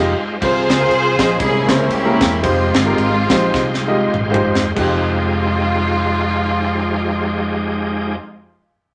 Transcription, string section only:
0.42 1.36 F4 medium
0.42 1.36 G#4 medium
0.42 1.36 C5 loud
1.40 2.39 C#4 medium
1.40 1.90 E4 medium
1.40 1.69 G#4 loud
1.69 1.91 A#4 loud
1.91 2.40 A#3 medium
1.91 2.40 E4 medium
1.91 2.40 G4 medium
2.44 4.10 G#3 medium
2.44 4.10 C4 medium
2.44 4.14 F4 loud
4.76 8.16 F4 loud

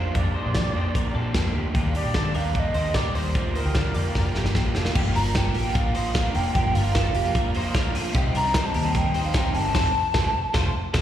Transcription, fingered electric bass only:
0.00 0.12 F2 medium
0.15 0.41 F2 medium
0.46 0.54 A#2 medium
0.55 0.72 F3 loud
0.75 1.09 F2 medium
1.15 1.32 A#2 medium
1.35 1.52 F2 medium
1.56 1.72 D2 medium
1.75 2.01 D#2 medium
2.05 2.14 A#2 medium
2.15 2.32 D#3 medium
2.35 2.69 D#2 medium
2.75 2.92 D#2 medium
2.95 3.12 A#1 medium
3.16 3.33 D#2 medium
3.35 3.61 D2 medium
3.65 3.74 D2 medium
3.75 3.92 D3 medium
3.95 4.12 F2 medium
4.15 4.32 F1 medium
4.36 4.52 G1 medium
4.55 4.72 A1 medium
4.75 4.92 F1 medium
4.96 5.12 G1 medium
5.16 5.49 G1 medium
5.55 6.31 A1 medium
6.35 6.52 F1 medium
6.55 6.72 G1 loud
6.75 7.09 G1 medium
7.15 7.91 F1 medium
8.15 8.32 C2 medium
8.35 8.69 C2 medium
8.75 9.57 D#2 medium
9.55 9.72 G1 medium
9.75 9.88 F1 loud
10.15 10.28 F1 loud
10.55 10.68 F1 loud
10.94 11.02 F1 loud

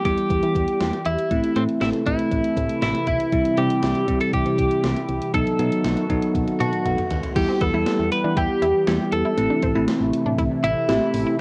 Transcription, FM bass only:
0.05 0.16 E2 loud
0.30 0.41 E2 loud
0.43 0.54 E3 medium
0.55 0.66 E2 loud
0.81 0.92 E2 loud
1.06 1.17 E2 loud
1.31 1.42 A1 loud
1.56 1.67 A2 loud
1.81 1.92 A1 loud
2.07 2.17 A1 loud
2.32 2.43 A1 loud
2.57 2.68 A2 loud
2.82 2.93 A1 loud
3.07 3.18 B1 loud
3.33 3.43 C2 loud
3.58 3.69 C3 loud
3.83 3.94 C2 loud
4.08 4.19 C2 loud
4.33 4.44 C2 loud
4.46 4.57 C3 medium
4.58 4.69 C2 loud
4.84 4.95 C2 loud
5.09 5.20 C2 medium
5.34 5.45 B1 loud
5.59 5.70 B2 loud
5.85 5.96 B1 loud
6.10 6.21 B1 loud
6.35 6.46 B1 loud
6.60 6.71 B2 loud
6.85 6.96 B1 medium
7.11 7.22 D#2 medium
7.36 7.47 E2 loud
7.61 7.72 E2 loud
7.74 7.85 E2 loud
7.99 8.10 E2 loud
8.24 8.35 E3 medium
8.37 8.48 E2 loud
8.62 8.73 E2 loud
8.87 8.98 E2 loud
9.12 9.23 E2 loud
9.38 9.49 A1 loud
9.63 9.74 A1 loud
9.75 9.86 A1 medium
10.01 10.12 A1 loud
10.26 10.37 A2 medium
10.38 10.49 A1 loud
10.64 10.75 A1 medium
10.89 11.00 A1 loud
11.14 11.25 A1 loud

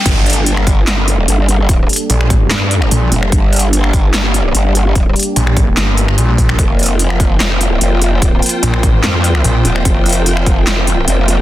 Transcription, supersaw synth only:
0.06 6.55 G3 medium
0.06 11.41 A#3 medium
0.06 6.55 D4 medium
0.06 3.29 A4 medium
3.32 6.55 G4 medium
6.59 11.41 F3 medium
6.59 11.41 C4 medium
6.59 11.41 A#4 medium

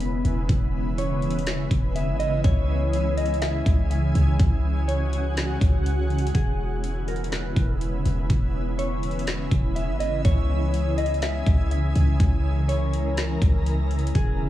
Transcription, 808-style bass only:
0.00 0.23 E1 loud
0.25 0.48 E1 loud
0.49 1.67 E1 loud
1.71 2.09 E1 loud
2.08 2.42 G#1 loud
2.44 3.62 C#2 loud
3.66 4.13 C#2 loud
4.15 4.39 C#2 loud
4.40 5.57 C#2 loud
5.61 6.32 C#2 loud
6.35 7.53 E1 loud
7.56 8.03 E1 loud
8.05 8.29 E1 loud
8.30 9.48 E1 loud
9.51 9.90 E1 loud
9.88 10.23 G#1 medium
10.25 11.43 C#2 loud
11.46 11.93 C#2 loud
11.96 12.19 C#2 loud
12.20 13.38 C#2 loud
13.42 14.12 C#2 loud
14.15 14.49 E1 loud

